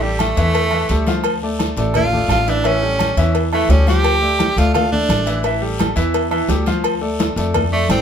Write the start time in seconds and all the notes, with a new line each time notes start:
Already playing: A1
0.02 G3 G4 A4, high conga
0.19 A3, cowbell, high conga, low agogo, short guiro
0.36 E2 E3 E4 E5, cowbell, high conga, short guiro
0.54 cowbell, high conga, low agogo, long guiro
0.71 E3 E4 E5, high conga, low agogo
0.89 D2 G3 G4 A4, cowbell, high conga, short guiro
1.07 F3 F4 F5, high conga, low agogo, short guiro
1.24 cowbell, high conga, low agogo, long guiro
1.43 A3 A4 D5, high conga
1.59 cowbell, high conga, low agogo, short guiro
1.77 A1 A3 A4 D5, cowbell, high conga, short guiro
1.94 F4, cowbell, high conga, low conga, low agogo, long guiro
2.13 A3 A4 D5, high conga, low conga
2.28 A1 F4, cowbell, high conga, low agogo, short guiro
2.47 E3 D4 E4 E5, cowbell, high conga, short guiro
2.64 E3 C#4 E4 E5, cowbell, high conga, low agogo, long guiro
2.83 G3 G4 A4, high conga
2.99 cowbell, high conga, low agogo, short guiro
3.17 E2 E3 E4 E5, cowbell, high conga, short guiro
3.35 cowbell, high conga, low agogo, long guiro
3.53 E3 A3 E4 E5, high conga, low agogo
3.69 D2 G3 C#4 G4 A4, cowbell, high conga, low timbale, short guiro
3.87 F3 F4 G4 F5, high conga, low agogo, short guiro
4.04 cowbell, high conga, low agogo, long guiro
4.22 A3 A4 D5, high conga
4.39 cowbell, high conga, low agogo, short guiro
4.56 D2 A3 F4 A4 D5, cowbell, high conga, short guiro
4.74 F4, cowbell, high conga, low conga, low agogo, long guiro
4.92 A3 D4 A4 D5, high conga, low conga
5.09 A1, cowbell, high conga, low agogo, short guiro
5.26 E3 E4 E5, cowbell, short guiro
5.43 E3 E4 E5, cowbell, high conga, low agogo, long guiro
5.62 G3 G4 A4, high conga
5.78 cowbell, high conga, low agogo, short guiro
5.96 E2 E3 E4 E5, cowbell, short guiro
6.14 cowbell, high conga, low agogo, long guiro
6.31 E3 E4 E5, high conga, low agogo
6.48 D2 G3 G4 A4, cowbell, high conga, low timbale, short guiro
6.66 F3 F4 F5, high conga, low agogo, short guiro
6.84 cowbell, high conga, low agogo, long guiro
7.01 A3 A4 D5, high conga
7.19 cowbell, high conga, low agogo, short guiro
7.36 F2 A3 A4 D5, cowbell, high conga, short guiro
7.54 cowbell, high conga, low conga, low agogo, long guiro
7.72 A3 A4 D5, high conga
7.89 A1 C4, cowbell, high conga, low agogo, short guiro